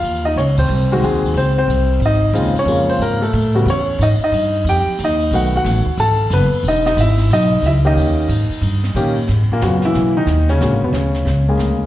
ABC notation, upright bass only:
X:1
M:4/4
L:1/8
Q:"Swing" 1/4=182
K:C#dor
V:1 name="Upright bass" clef=bass
D,,2 C,,2 ^B,,,2 D,,2 | C,,2 ^B,,,2 G,,,2 D,, z | ^E,,2 G,,2 =A,,2 =E,,2 | G,, z =G,,2 ^E,, z D,,2 |
B,,,2 =A,,, z G,,,2 F,,, z | E,,,2 G,,,2 B,,,2 C,,2 | D,,2 G,, z =G,,2 A,,2 | G,, z F,,2 B,,,2 D,,2 |
(3A,,, G,,, F,,, =D,,2 C,,2 D,,2 |]